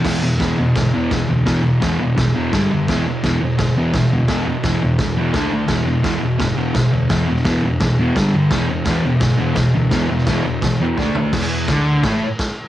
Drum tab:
CC |x-x-x-x-|x-x-x-x-|x-x-x-x-|x-x-x-x-|
SD |o-o-o-o-|o-o-o-o-|o-o-o-o-|o-o-o-o-|
FT |--------|--------|--------|--------|
BD |o-o-o-o-|o-o-o-o-|o-o-o-o-|o-o-o-o-|

CC |x-x-x-x-|x-x-x-x-|x-x-x-x-|x-x-x---|
SD |o-o-o-o-|o-o-o-o-|o-o-o-o-|o-o-o-o-|
FT |--------|--------|--------|-------o|
BD |o-o-o-o-|o-o-o-o-|o-o-o-o-|o-o-o-o-|

CC |x-x-x-x-|
SD |o-o-o-o-|
FT |--------|
BD |o-o-o-o-|